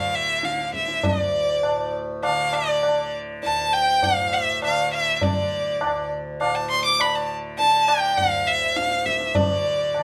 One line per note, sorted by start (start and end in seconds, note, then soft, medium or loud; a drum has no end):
0.00 1.05 D2 medium
0.00 1.65 A2 medium
0.00 0.44 D3 medium
0.00 0.16 F5 medium
0.15 0.46 E5 medium
0.43 2.26 D3 medium
0.43 0.74 F5 medium
0.43 tabla te medium
0.59 tabla te medium
0.74 1.06 E5 medium
0.74 tabla ke medium
0.88 tabla te medium
1.03 3.45 D2 medium
1.03 1.94 D5 medium
1.03 tabla tin loud
1.03 tabla ge medium
1.63 4.06 A2 medium
1.63 tabla na medium
2.23 2.87 D3 medium
2.23 2.55 F5 medium
2.23 tabla na medium
2.53 3.14 D5 medium
2.53 tabla na medium
2.83 tabla na medium
2.87 4.65 D3 medium
3.43 5.83 D2 medium
3.43 3.75 A5 medium
3.43 tabla tin medium
3.73 4.05 G5 loud
4.03 6.42 A2 medium
4.03 4.35 F5 medium
4.03 tabla tin medium
4.03 tabla ge medium
4.34 4.63 E5 medium
4.62 5.24 D3 medium
4.62 4.91 F5 medium
4.62 tabla na medium
4.94 5.16 E5 medium
5.16 5.25 E5 medium
5.21 7.01 D3 medium
5.21 6.11 D5 medium
5.21 tabla tin loud
5.21 tabla ge medium
5.81 8.21 D2 medium
5.81 tabla na medium
6.40 8.79 A2 medium
6.40 6.56 F5 medium
6.40 tabla na medium
6.55 6.70 A5 medium
6.71 6.84 C6 loud
6.85 7.02 D6 medium
7.00 7.61 D3 medium
7.00 7.17 B5 medium
7.00 tabla na medium
7.15 7.30 A5 medium
7.58 9.39 D3 medium
7.58 7.89 A5 loud
7.58 tabla tin medium
7.88 8.19 G5 medium
7.88 tabla na medium
8.17 10.03 D2 medium
8.17 8.48 F5 medium
8.17 tabla tin medium
8.17 tabla ge medium
8.47 8.78 E5 medium
8.76 10.03 A2 medium
8.76 9.07 F5 loud
8.76 tabla te medium
8.92 tabla te medium
9.06 9.37 E5 medium
9.06 tabla ke medium
9.20 tabla te medium
9.35 10.03 D5 medium
9.35 tabla tin loud
9.35 tabla ge medium
9.39 9.98 D3 medium
9.95 10.03 D3 medium
9.95 tabla na medium